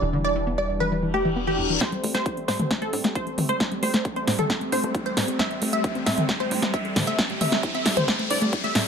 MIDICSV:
0, 0, Header, 1, 8, 480
1, 0, Start_track
1, 0, Key_signature, 0, "minor"
1, 0, Tempo, 447761
1, 23, Time_signature, 4, 2, 24, 8
1, 9516, End_track
2, 0, Start_track
2, 0, Title_t, "Synth pluck"
2, 0, Program_c, 0, 84
2, 0, Note_on_c, 0, 74, 88
2, 132, Note_off_c, 0, 74, 0
2, 263, Note_on_c, 0, 74, 88
2, 493, Note_off_c, 0, 74, 0
2, 622, Note_on_c, 0, 74, 84
2, 776, Note_off_c, 0, 74, 0
2, 861, Note_on_c, 0, 71, 91
2, 1092, Note_off_c, 0, 71, 0
2, 1221, Note_on_c, 0, 67, 95
2, 1452, Note_off_c, 0, 67, 0
2, 1579, Note_on_c, 0, 67, 91
2, 1811, Note_off_c, 0, 67, 0
2, 1940, Note_on_c, 0, 72, 91
2, 2172, Note_off_c, 0, 72, 0
2, 2299, Note_on_c, 0, 72, 91
2, 2531, Note_off_c, 0, 72, 0
2, 2659, Note_on_c, 0, 72, 89
2, 2891, Note_off_c, 0, 72, 0
2, 3021, Note_on_c, 0, 69, 91
2, 3252, Note_off_c, 0, 69, 0
2, 3382, Note_on_c, 0, 72, 94
2, 3612, Note_off_c, 0, 72, 0
2, 3741, Note_on_c, 0, 72, 91
2, 3972, Note_off_c, 0, 72, 0
2, 4103, Note_on_c, 0, 72, 95
2, 4333, Note_off_c, 0, 72, 0
2, 4463, Note_on_c, 0, 72, 86
2, 4616, Note_off_c, 0, 72, 0
2, 4704, Note_on_c, 0, 69, 92
2, 4933, Note_off_c, 0, 69, 0
2, 5063, Note_on_c, 0, 72, 96
2, 5293, Note_off_c, 0, 72, 0
2, 5423, Note_on_c, 0, 72, 94
2, 5653, Note_off_c, 0, 72, 0
2, 5783, Note_on_c, 0, 76, 93
2, 6013, Note_off_c, 0, 76, 0
2, 6142, Note_on_c, 0, 76, 90
2, 6373, Note_off_c, 0, 76, 0
2, 6499, Note_on_c, 0, 76, 91
2, 6731, Note_off_c, 0, 76, 0
2, 6862, Note_on_c, 0, 72, 97
2, 7092, Note_off_c, 0, 72, 0
2, 7222, Note_on_c, 0, 76, 92
2, 7452, Note_off_c, 0, 76, 0
2, 7582, Note_on_c, 0, 76, 94
2, 7813, Note_off_c, 0, 76, 0
2, 7943, Note_on_c, 0, 76, 92
2, 8173, Note_off_c, 0, 76, 0
2, 8304, Note_on_c, 0, 76, 89
2, 8457, Note_off_c, 0, 76, 0
2, 8542, Note_on_c, 0, 72, 91
2, 8773, Note_off_c, 0, 72, 0
2, 8902, Note_on_c, 0, 74, 94
2, 9132, Note_off_c, 0, 74, 0
2, 9261, Note_on_c, 0, 76, 92
2, 9492, Note_off_c, 0, 76, 0
2, 9516, End_track
3, 0, Start_track
3, 0, Title_t, "Synth arpeggio sound"
3, 0, Program_c, 1, 84
3, 22, Note_on_c, 1, 52, 85
3, 61, Note_off_c, 1, 52, 0
3, 142, Note_on_c, 1, 50, 97
3, 207, Note_off_c, 1, 50, 0
3, 263, Note_on_c, 1, 52, 92
3, 327, Note_off_c, 1, 52, 0
3, 382, Note_on_c, 1, 52, 99
3, 421, Note_off_c, 1, 52, 0
3, 503, Note_on_c, 1, 59, 79
3, 567, Note_off_c, 1, 59, 0
3, 622, Note_on_c, 1, 55, 74
3, 687, Note_off_c, 1, 55, 0
3, 743, Note_on_c, 1, 40, 71
3, 840, Note_off_c, 1, 40, 0
3, 863, Note_on_c, 1, 52, 76
3, 927, Note_off_c, 1, 52, 0
3, 982, Note_on_c, 1, 52, 78
3, 1079, Note_off_c, 1, 52, 0
3, 1102, Note_on_c, 1, 52, 71
3, 1199, Note_off_c, 1, 52, 0
3, 1221, Note_on_c, 1, 57, 72
3, 1261, Note_off_c, 1, 57, 0
3, 1341, Note_on_c, 1, 52, 99
3, 1406, Note_off_c, 1, 52, 0
3, 1461, Note_on_c, 1, 59, 81
3, 1526, Note_off_c, 1, 59, 0
3, 1581, Note_on_c, 1, 52, 72
3, 1646, Note_off_c, 1, 52, 0
3, 1701, Note_on_c, 1, 40, 73
3, 1798, Note_off_c, 1, 40, 0
3, 1820, Note_on_c, 1, 52, 76
3, 1886, Note_off_c, 1, 52, 0
3, 1940, Note_on_c, 1, 57, 84
3, 1980, Note_off_c, 1, 57, 0
3, 2059, Note_on_c, 1, 55, 98
3, 2125, Note_off_c, 1, 55, 0
3, 2180, Note_on_c, 1, 57, 95
3, 2246, Note_off_c, 1, 57, 0
3, 2299, Note_on_c, 1, 57, 98
3, 2340, Note_off_c, 1, 57, 0
3, 2419, Note_on_c, 1, 64, 84
3, 2486, Note_off_c, 1, 64, 0
3, 2539, Note_on_c, 1, 60, 75
3, 2606, Note_off_c, 1, 60, 0
3, 2660, Note_on_c, 1, 45, 72
3, 2758, Note_off_c, 1, 45, 0
3, 2780, Note_on_c, 1, 57, 77
3, 2846, Note_off_c, 1, 57, 0
3, 2901, Note_on_c, 1, 57, 80
3, 2998, Note_off_c, 1, 57, 0
3, 3020, Note_on_c, 1, 57, 74
3, 3118, Note_off_c, 1, 57, 0
3, 3141, Note_on_c, 1, 62, 72
3, 3181, Note_off_c, 1, 62, 0
3, 3261, Note_on_c, 1, 57, 97
3, 3326, Note_off_c, 1, 57, 0
3, 3381, Note_on_c, 1, 64, 81
3, 3446, Note_off_c, 1, 64, 0
3, 3502, Note_on_c, 1, 57, 73
3, 3567, Note_off_c, 1, 57, 0
3, 3622, Note_on_c, 1, 45, 75
3, 3719, Note_off_c, 1, 45, 0
3, 3741, Note_on_c, 1, 57, 78
3, 3807, Note_off_c, 1, 57, 0
3, 3862, Note_on_c, 1, 57, 84
3, 3901, Note_off_c, 1, 57, 0
3, 3982, Note_on_c, 1, 55, 96
3, 4047, Note_off_c, 1, 55, 0
3, 4101, Note_on_c, 1, 57, 97
3, 4166, Note_off_c, 1, 57, 0
3, 4222, Note_on_c, 1, 57, 100
3, 4261, Note_off_c, 1, 57, 0
3, 4341, Note_on_c, 1, 64, 82
3, 4406, Note_off_c, 1, 64, 0
3, 4462, Note_on_c, 1, 60, 74
3, 4527, Note_off_c, 1, 60, 0
3, 4582, Note_on_c, 1, 45, 74
3, 4679, Note_off_c, 1, 45, 0
3, 4702, Note_on_c, 1, 57, 78
3, 4767, Note_off_c, 1, 57, 0
3, 4823, Note_on_c, 1, 57, 78
3, 4920, Note_off_c, 1, 57, 0
3, 4943, Note_on_c, 1, 57, 76
3, 5040, Note_off_c, 1, 57, 0
3, 5063, Note_on_c, 1, 62, 74
3, 5101, Note_off_c, 1, 62, 0
3, 5183, Note_on_c, 1, 57, 103
3, 5247, Note_off_c, 1, 57, 0
3, 5303, Note_on_c, 1, 64, 81
3, 5367, Note_off_c, 1, 64, 0
3, 5422, Note_on_c, 1, 57, 74
3, 5487, Note_off_c, 1, 57, 0
3, 5543, Note_on_c, 1, 45, 73
3, 5640, Note_off_c, 1, 45, 0
3, 5661, Note_on_c, 1, 57, 78
3, 5726, Note_off_c, 1, 57, 0
3, 5782, Note_on_c, 1, 57, 86
3, 5821, Note_off_c, 1, 57, 0
3, 5902, Note_on_c, 1, 55, 94
3, 5967, Note_off_c, 1, 55, 0
3, 6021, Note_on_c, 1, 57, 98
3, 6086, Note_off_c, 1, 57, 0
3, 6141, Note_on_c, 1, 57, 100
3, 6180, Note_off_c, 1, 57, 0
3, 6261, Note_on_c, 1, 64, 81
3, 6326, Note_off_c, 1, 64, 0
3, 6382, Note_on_c, 1, 60, 76
3, 6447, Note_off_c, 1, 60, 0
3, 6502, Note_on_c, 1, 45, 74
3, 6599, Note_off_c, 1, 45, 0
3, 6622, Note_on_c, 1, 57, 76
3, 6687, Note_off_c, 1, 57, 0
3, 6742, Note_on_c, 1, 57, 79
3, 6839, Note_off_c, 1, 57, 0
3, 6863, Note_on_c, 1, 57, 77
3, 6960, Note_off_c, 1, 57, 0
3, 6982, Note_on_c, 1, 62, 77
3, 7021, Note_off_c, 1, 62, 0
3, 7103, Note_on_c, 1, 57, 101
3, 7167, Note_off_c, 1, 57, 0
3, 7222, Note_on_c, 1, 64, 85
3, 7287, Note_off_c, 1, 64, 0
3, 7342, Note_on_c, 1, 57, 75
3, 7407, Note_off_c, 1, 57, 0
3, 7462, Note_on_c, 1, 45, 78
3, 7559, Note_off_c, 1, 45, 0
3, 7584, Note_on_c, 1, 57, 78
3, 7648, Note_off_c, 1, 57, 0
3, 7702, Note_on_c, 1, 57, 83
3, 7741, Note_off_c, 1, 57, 0
3, 7823, Note_on_c, 1, 55, 99
3, 7887, Note_off_c, 1, 55, 0
3, 7943, Note_on_c, 1, 57, 100
3, 8007, Note_off_c, 1, 57, 0
3, 8063, Note_on_c, 1, 57, 100
3, 8102, Note_off_c, 1, 57, 0
3, 8184, Note_on_c, 1, 64, 83
3, 8248, Note_off_c, 1, 64, 0
3, 8304, Note_on_c, 1, 60, 75
3, 8368, Note_off_c, 1, 60, 0
3, 8424, Note_on_c, 1, 45, 75
3, 8520, Note_off_c, 1, 45, 0
3, 8543, Note_on_c, 1, 57, 78
3, 8608, Note_off_c, 1, 57, 0
3, 8663, Note_on_c, 1, 57, 79
3, 8760, Note_off_c, 1, 57, 0
3, 8784, Note_on_c, 1, 57, 73
3, 8880, Note_off_c, 1, 57, 0
3, 8903, Note_on_c, 1, 62, 76
3, 8942, Note_off_c, 1, 62, 0
3, 9023, Note_on_c, 1, 57, 103
3, 9087, Note_off_c, 1, 57, 0
3, 9143, Note_on_c, 1, 64, 82
3, 9208, Note_off_c, 1, 64, 0
3, 9262, Note_on_c, 1, 57, 75
3, 9327, Note_off_c, 1, 57, 0
3, 9381, Note_on_c, 1, 45, 74
3, 9479, Note_off_c, 1, 45, 0
3, 9516, End_track
4, 0, Start_track
4, 0, Title_t, "Supersaw synth"
4, 0, Program_c, 2, 81
4, 0, Note_on_c, 2, 52, 78
4, 0, Note_on_c, 2, 55, 74
4, 0, Note_on_c, 2, 62, 88
4, 1900, Note_off_c, 2, 52, 0
4, 1900, Note_off_c, 2, 55, 0
4, 1900, Note_off_c, 2, 62, 0
4, 1941, Note_on_c, 2, 55, 77
4, 1941, Note_on_c, 2, 57, 73
4, 1941, Note_on_c, 2, 60, 85
4, 9516, Note_off_c, 2, 55, 0
4, 9516, Note_off_c, 2, 57, 0
4, 9516, Note_off_c, 2, 60, 0
4, 9516, End_track
5, 0, Start_track
5, 0, Title_t, "Analog synth bass"
5, 0, Program_c, 3, 38
5, 22, Note_on_c, 3, 28, 90
5, 1918, Note_off_c, 3, 28, 0
5, 2181, Note_on_c, 3, 33, 92
5, 2361, Note_off_c, 3, 33, 0
5, 2661, Note_on_c, 3, 45, 86
5, 2841, Note_off_c, 3, 45, 0
5, 3141, Note_on_c, 3, 45, 95
5, 3231, Note_off_c, 3, 45, 0
5, 3261, Note_on_c, 3, 33, 98
5, 3441, Note_off_c, 3, 33, 0
5, 3621, Note_on_c, 3, 33, 99
5, 3801, Note_off_c, 3, 33, 0
5, 4102, Note_on_c, 3, 33, 94
5, 4281, Note_off_c, 3, 33, 0
5, 4582, Note_on_c, 3, 45, 92
5, 4761, Note_off_c, 3, 45, 0
5, 5062, Note_on_c, 3, 45, 95
5, 5151, Note_off_c, 3, 45, 0
5, 5182, Note_on_c, 3, 33, 102
5, 5361, Note_off_c, 3, 33, 0
5, 5542, Note_on_c, 3, 33, 101
5, 5721, Note_off_c, 3, 33, 0
5, 6023, Note_on_c, 3, 33, 94
5, 6201, Note_off_c, 3, 33, 0
5, 6502, Note_on_c, 3, 45, 91
5, 6681, Note_off_c, 3, 45, 0
5, 6982, Note_on_c, 3, 45, 94
5, 7072, Note_off_c, 3, 45, 0
5, 7102, Note_on_c, 3, 33, 98
5, 7281, Note_off_c, 3, 33, 0
5, 7462, Note_on_c, 3, 33, 105
5, 7641, Note_off_c, 3, 33, 0
5, 7942, Note_on_c, 3, 33, 96
5, 8121, Note_off_c, 3, 33, 0
5, 8422, Note_on_c, 3, 45, 89
5, 8601, Note_off_c, 3, 45, 0
5, 8902, Note_on_c, 3, 45, 96
5, 8992, Note_off_c, 3, 45, 0
5, 9021, Note_on_c, 3, 33, 98
5, 9201, Note_off_c, 3, 33, 0
5, 9381, Note_on_c, 3, 33, 99
5, 9516, Note_off_c, 3, 33, 0
5, 9516, End_track
6, 0, Start_track
6, 0, Title_t, "Reverse cymbal"
6, 0, Program_c, 4, 119
6, 982, Note_on_c, 4, 60, 71
6, 1942, Note_off_c, 4, 60, 0
6, 9516, End_track
7, 0, Start_track
7, 0, Title_t, "Riser"
7, 0, Program_c, 5, 103
7, 1942, Note_on_c, 5, 60, 77
7, 9516, Note_off_c, 5, 60, 0
7, 9516, End_track
8, 0, Start_track
8, 0, Title_t, "Drums"
8, 1941, Note_on_c, 9, 36, 116
8, 1942, Note_on_c, 9, 38, 44
8, 1942, Note_on_c, 9, 42, 52
8, 2048, Note_off_c, 9, 36, 0
8, 2049, Note_off_c, 9, 38, 0
8, 2049, Note_off_c, 9, 42, 0
8, 2062, Note_on_c, 9, 42, 25
8, 2169, Note_off_c, 9, 42, 0
8, 2183, Note_on_c, 9, 46, 99
8, 2290, Note_off_c, 9, 46, 0
8, 2302, Note_on_c, 9, 38, 40
8, 2302, Note_on_c, 9, 42, 51
8, 2409, Note_off_c, 9, 38, 0
8, 2409, Note_off_c, 9, 42, 0
8, 2421, Note_on_c, 9, 36, 112
8, 2422, Note_on_c, 9, 42, 51
8, 2528, Note_off_c, 9, 36, 0
8, 2529, Note_off_c, 9, 42, 0
8, 2543, Note_on_c, 9, 42, 26
8, 2650, Note_off_c, 9, 42, 0
8, 2663, Note_on_c, 9, 38, 47
8, 2663, Note_on_c, 9, 46, 86
8, 2770, Note_off_c, 9, 38, 0
8, 2770, Note_off_c, 9, 46, 0
8, 2781, Note_on_c, 9, 42, 54
8, 2781, Note_on_c, 9, 47, 70
8, 2889, Note_off_c, 9, 42, 0
8, 2889, Note_off_c, 9, 47, 0
8, 2901, Note_on_c, 9, 36, 113
8, 2901, Note_on_c, 9, 38, 47
8, 2901, Note_on_c, 9, 42, 51
8, 3008, Note_off_c, 9, 36, 0
8, 3009, Note_off_c, 9, 38, 0
8, 3009, Note_off_c, 9, 42, 0
8, 3021, Note_on_c, 9, 42, 26
8, 3128, Note_off_c, 9, 42, 0
8, 3141, Note_on_c, 9, 46, 98
8, 3249, Note_off_c, 9, 46, 0
8, 3262, Note_on_c, 9, 38, 43
8, 3262, Note_on_c, 9, 42, 51
8, 3369, Note_off_c, 9, 38, 0
8, 3369, Note_off_c, 9, 42, 0
8, 3381, Note_on_c, 9, 36, 115
8, 3383, Note_on_c, 9, 42, 53
8, 3489, Note_off_c, 9, 36, 0
8, 3490, Note_off_c, 9, 42, 0
8, 3503, Note_on_c, 9, 42, 25
8, 3610, Note_off_c, 9, 42, 0
8, 3622, Note_on_c, 9, 46, 89
8, 3622, Note_on_c, 9, 47, 73
8, 3729, Note_off_c, 9, 46, 0
8, 3729, Note_off_c, 9, 47, 0
8, 3742, Note_on_c, 9, 42, 51
8, 3850, Note_off_c, 9, 42, 0
8, 3861, Note_on_c, 9, 36, 116
8, 3863, Note_on_c, 9, 38, 51
8, 3863, Note_on_c, 9, 42, 49
8, 3969, Note_off_c, 9, 36, 0
8, 3970, Note_off_c, 9, 38, 0
8, 3970, Note_off_c, 9, 42, 0
8, 3983, Note_on_c, 9, 42, 25
8, 4090, Note_off_c, 9, 42, 0
8, 4102, Note_on_c, 9, 46, 102
8, 4209, Note_off_c, 9, 46, 0
8, 4222, Note_on_c, 9, 38, 46
8, 4222, Note_on_c, 9, 42, 51
8, 4329, Note_off_c, 9, 38, 0
8, 4329, Note_off_c, 9, 42, 0
8, 4342, Note_on_c, 9, 36, 113
8, 4342, Note_on_c, 9, 42, 52
8, 4449, Note_off_c, 9, 36, 0
8, 4450, Note_off_c, 9, 42, 0
8, 4462, Note_on_c, 9, 42, 26
8, 4569, Note_off_c, 9, 42, 0
8, 4582, Note_on_c, 9, 38, 54
8, 4582, Note_on_c, 9, 46, 89
8, 4690, Note_off_c, 9, 38, 0
8, 4690, Note_off_c, 9, 46, 0
8, 4702, Note_on_c, 9, 42, 51
8, 4702, Note_on_c, 9, 47, 72
8, 4810, Note_off_c, 9, 42, 0
8, 4810, Note_off_c, 9, 47, 0
8, 4822, Note_on_c, 9, 36, 116
8, 4823, Note_on_c, 9, 38, 54
8, 4823, Note_on_c, 9, 42, 49
8, 4929, Note_off_c, 9, 36, 0
8, 4930, Note_off_c, 9, 38, 0
8, 4930, Note_off_c, 9, 42, 0
8, 4944, Note_on_c, 9, 42, 25
8, 5051, Note_off_c, 9, 42, 0
8, 5064, Note_on_c, 9, 46, 106
8, 5171, Note_off_c, 9, 46, 0
8, 5184, Note_on_c, 9, 42, 51
8, 5291, Note_off_c, 9, 42, 0
8, 5302, Note_on_c, 9, 36, 116
8, 5303, Note_on_c, 9, 42, 52
8, 5409, Note_off_c, 9, 36, 0
8, 5411, Note_off_c, 9, 42, 0
8, 5423, Note_on_c, 9, 42, 25
8, 5530, Note_off_c, 9, 42, 0
8, 5542, Note_on_c, 9, 38, 55
8, 5542, Note_on_c, 9, 46, 90
8, 5649, Note_off_c, 9, 38, 0
8, 5649, Note_off_c, 9, 46, 0
8, 5662, Note_on_c, 9, 42, 51
8, 5770, Note_off_c, 9, 42, 0
8, 5782, Note_on_c, 9, 36, 123
8, 5782, Note_on_c, 9, 38, 58
8, 5782, Note_on_c, 9, 42, 49
8, 5889, Note_off_c, 9, 36, 0
8, 5889, Note_off_c, 9, 38, 0
8, 5889, Note_off_c, 9, 42, 0
8, 5902, Note_on_c, 9, 42, 24
8, 6010, Note_off_c, 9, 42, 0
8, 6021, Note_on_c, 9, 46, 108
8, 6128, Note_off_c, 9, 46, 0
8, 6141, Note_on_c, 9, 42, 49
8, 6249, Note_off_c, 9, 42, 0
8, 6261, Note_on_c, 9, 36, 122
8, 6261, Note_on_c, 9, 42, 50
8, 6368, Note_off_c, 9, 42, 0
8, 6369, Note_off_c, 9, 36, 0
8, 6381, Note_on_c, 9, 42, 25
8, 6488, Note_off_c, 9, 42, 0
8, 6502, Note_on_c, 9, 38, 59
8, 6502, Note_on_c, 9, 46, 97
8, 6609, Note_off_c, 9, 38, 0
8, 6609, Note_off_c, 9, 46, 0
8, 6621, Note_on_c, 9, 42, 51
8, 6621, Note_on_c, 9, 47, 77
8, 6728, Note_off_c, 9, 42, 0
8, 6728, Note_off_c, 9, 47, 0
8, 6741, Note_on_c, 9, 38, 57
8, 6741, Note_on_c, 9, 42, 50
8, 6742, Note_on_c, 9, 36, 125
8, 6848, Note_off_c, 9, 38, 0
8, 6848, Note_off_c, 9, 42, 0
8, 6849, Note_off_c, 9, 36, 0
8, 6861, Note_on_c, 9, 42, 25
8, 6969, Note_off_c, 9, 42, 0
8, 6981, Note_on_c, 9, 46, 106
8, 7088, Note_off_c, 9, 46, 0
8, 7101, Note_on_c, 9, 38, 52
8, 7101, Note_on_c, 9, 42, 48
8, 7208, Note_off_c, 9, 38, 0
8, 7208, Note_off_c, 9, 42, 0
8, 7222, Note_on_c, 9, 36, 119
8, 7222, Note_on_c, 9, 42, 49
8, 7329, Note_off_c, 9, 36, 0
8, 7329, Note_off_c, 9, 42, 0
8, 7342, Note_on_c, 9, 42, 25
8, 7449, Note_off_c, 9, 42, 0
8, 7462, Note_on_c, 9, 38, 64
8, 7462, Note_on_c, 9, 46, 94
8, 7462, Note_on_c, 9, 47, 76
8, 7570, Note_off_c, 9, 38, 0
8, 7570, Note_off_c, 9, 46, 0
8, 7570, Note_off_c, 9, 47, 0
8, 7582, Note_on_c, 9, 42, 49
8, 7689, Note_off_c, 9, 42, 0
8, 7702, Note_on_c, 9, 36, 123
8, 7704, Note_on_c, 9, 38, 64
8, 7704, Note_on_c, 9, 42, 48
8, 7809, Note_off_c, 9, 36, 0
8, 7811, Note_off_c, 9, 38, 0
8, 7811, Note_off_c, 9, 42, 0
8, 7823, Note_on_c, 9, 42, 25
8, 7930, Note_off_c, 9, 42, 0
8, 7943, Note_on_c, 9, 46, 105
8, 7943, Note_on_c, 9, 47, 59
8, 8050, Note_off_c, 9, 46, 0
8, 8050, Note_off_c, 9, 47, 0
8, 8063, Note_on_c, 9, 38, 57
8, 8170, Note_off_c, 9, 38, 0
8, 8182, Note_on_c, 9, 36, 119
8, 8182, Note_on_c, 9, 42, 49
8, 8289, Note_off_c, 9, 42, 0
8, 8290, Note_off_c, 9, 36, 0
8, 8302, Note_on_c, 9, 42, 24
8, 8409, Note_off_c, 9, 42, 0
8, 8422, Note_on_c, 9, 38, 65
8, 8422, Note_on_c, 9, 46, 92
8, 8529, Note_off_c, 9, 38, 0
8, 8529, Note_off_c, 9, 46, 0
8, 8543, Note_on_c, 9, 42, 52
8, 8543, Note_on_c, 9, 47, 78
8, 8650, Note_off_c, 9, 42, 0
8, 8650, Note_off_c, 9, 47, 0
8, 8662, Note_on_c, 9, 38, 68
8, 8662, Note_on_c, 9, 42, 48
8, 8663, Note_on_c, 9, 36, 122
8, 8770, Note_off_c, 9, 36, 0
8, 8770, Note_off_c, 9, 38, 0
8, 8770, Note_off_c, 9, 42, 0
8, 8782, Note_on_c, 9, 42, 25
8, 8890, Note_off_c, 9, 42, 0
8, 8902, Note_on_c, 9, 46, 107
8, 9010, Note_off_c, 9, 46, 0
8, 9022, Note_on_c, 9, 42, 50
8, 9130, Note_off_c, 9, 42, 0
8, 9142, Note_on_c, 9, 36, 117
8, 9142, Note_on_c, 9, 42, 49
8, 9249, Note_off_c, 9, 42, 0
8, 9250, Note_off_c, 9, 36, 0
8, 9262, Note_on_c, 9, 42, 24
8, 9369, Note_off_c, 9, 42, 0
8, 9382, Note_on_c, 9, 38, 73
8, 9382, Note_on_c, 9, 46, 93
8, 9490, Note_off_c, 9, 38, 0
8, 9490, Note_off_c, 9, 46, 0
8, 9516, End_track
0, 0, End_of_file